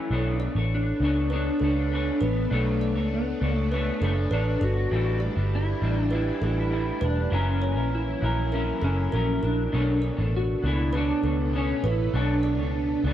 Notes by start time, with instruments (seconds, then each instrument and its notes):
Already playing: clean electric guitar F#2 E3 A3 C#4, electric slide guitar E4
0.10 picked electric bass B1, string machine A3 B3 D4, clean electric guitar B3 D4 A4 C#5
0.40 kalimba D5
0.55 picked electric bass A1, clean electric guitar A4 C#5
0.59 clean electric guitar D4
0.74 electric slide guitar D4
1.00 picked electric bass C#2, clean electric guitar B3 D4 A4
1.05 clean electric guitar C#5
1.30 clean electric guitar B3 D4 A4 C#5, kalimba B4
1.35 electric slide guitar D4
1.60 picked electric bass C#2, clean electric guitar B3 D4, kalimba A4
1.64 clean electric guitar A4 C#5
1.79 electric slide guitar D4
1.92 clean electric guitar B3 D4 A4 C#5
2.21 picked electric bass A1, electric slide guitar B3, kalimba B4
2.50 picked electric bass B1, electric slide guitar A3, clean electric guitar B3 D4 A4 C#5
2.81 kalimba D5
2.95 picked electric bass C#2, clean electric guitar D4 A4 C#5
3.14 electric slide guitar B3
3.40 picked electric bass C#2, clean electric guitar B3 D4 A4 C#5
3.57 electric slide guitar A3
3.71 electric slide guitar A3, clean electric guitar B3 D4 A4 C#5, kalimba B4
4.01 picked electric bass F#1, electric slide guitar A3, clean electric guitar B3 D4 A4 C#5, kalimba A4
4.31 picked electric bass A1, clean electric guitar B3 D4 A4 C#5, electric slide guitar D4, kalimba B4
4.61 picked electric bass G1, electric slide guitar F#4, kalimba A4
4.91 picked electric bass A1, clean electric guitar A2 G3 D4 E4, string machine G3 A3
5.20 kalimba D5
5.35 picked electric bass G1, clean electric guitar G3 D4 E4
5.55 electric slide guitar E4
5.81 picked electric bass A1, clean electric guitar A2 G3 D4 E4
6.02 electric slide guitar D4
6.10 clean electric guitar A2 G3 D4 E4, kalimba B4
6.15 electric slide guitar E4
6.41 picked electric bass A1, clean electric guitar A2 G3 D4 E4, kalimba A4
6.60 electric slide guitar E4
6.71 clean electric guitar A2 G3 D4 E4
7.01 picked electric bass E1, electric slide guitar D4, kalimba B4
7.30 picked electric bass F#1, string machine E3 F#3 A#3, clean electric guitar F#3 C#4 E4 A#4, electric slide guitar C#4
7.62 kalimba C#5
7.76 picked electric bass A#1, clean electric guitar C#4 E4 A#4
7.95 electric slide guitar E4
8.21 picked electric bass A#1, clean electric guitar F#3 C#4 E4 A#4
8.52 clean electric guitar F#3 C#4 E4 A#4, electric slide guitar C#4, kalimba A#4
8.81 picked electric bass F#1, clean electric guitar F#3 C#4 E4 A#4, electric slide guitar C#4, kalimba A4
9.12 picked electric bass A#1, clean electric guitar F#3 E4 A#4, electric slide guitar C#4, kalimba A#4
9.43 picked electric bass A#1, electric slide guitar D4, kalimba A#4
9.72 picked electric bass B1, string machine B2 A3 B3, clean electric guitar B3 D4 A4 C#5
10.02 kalimba D5
10.17 picked electric bass A1, clean electric guitar D4 A4 C#5
10.36 electric slide guitar F#4
10.62 picked electric bass C#2, clean electric guitar B3 D4 A4 C#5
10.67 electric slide guitar E4
10.92 clean electric guitar B3 D4 A4 C#5, kalimba B4
10.97 electric slide guitar D4
11.23 picked electric bass C#2, clean electric guitar B3 D4 A4 C#5, kalimba A4
11.53 clean electric guitar B3 A4 C#5, electric slide guitar C#4
11.84 picked electric bass A1, electric slide guitar E4, kalimba B4
12.14 picked electric bass B1, clean electric guitar B3 D4 A4 C#5, electric slide guitar D4
12.43 kalimba D5
12.59 picked electric bass C#2, clean electric guitar D4 A4 C#5
13.04 picked electric bass C#2, clean electric guitar B3 D4 A4, electric slide guitar D4
13.08 clean electric guitar C#5